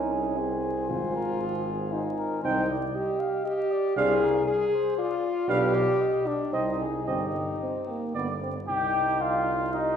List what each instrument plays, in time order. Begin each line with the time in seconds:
Already playing: tuba C2, euphonium C#4, french horn D#4, cornet A#4, trumpet G#5
0.12 cornet G#4
0.38 euphonium C4, french horn G#4, cornet C5
0.90 tuba G#1, french horn F4, cornet C5
1.16 cornet A#4
1.41 cornet G#4
1.93 french horn D#4, cornet C5
2.18 cornet A#4
2.43 tuba C2, euphonium C4, french horn D#4, cornet C5, trumpet G5
2.70 cornet D5
2.95 french horn G4, cornet D#5
3.19 cornet F5
3.45 french horn G4, cornet D#5
3.71 cornet D5
3.96 tuba C2, euphonium D4, french horn G#4, cornet C5, trumpet F5
4.23 cornet A#4
4.47 french horn G#4, cornet G#4
4.73 cornet C5
4.98 french horn F4, cornet D5
5.49 tuba B1, euphonium D4, french horn G4, cornet B4, trumpet F5
5.75 cornet D5
6.01 cornet D#5
6.27 french horn D4, cornet D5
6.53 tuba C2, euphonium C4, french horn D#4, cornet C5, trumpet D#5
6.81 cornet G#4
7.06 tuba G1, euphonium C4, french horn D#4, cornet G4, trumpet D#5
7.61 euphonium C4
7.89 euphonium A#3
8.15 tuba G1, euphonium B3, trumpet D5
8.42 euphonium C4
8.68 tuba C2, euphonium D#4, trumpet G4, cornet G5
9.21 trumpet F4, french horn F4, cornet F5
9.74 trumpet D#4, euphonium D#4, french horn G4, cornet D#5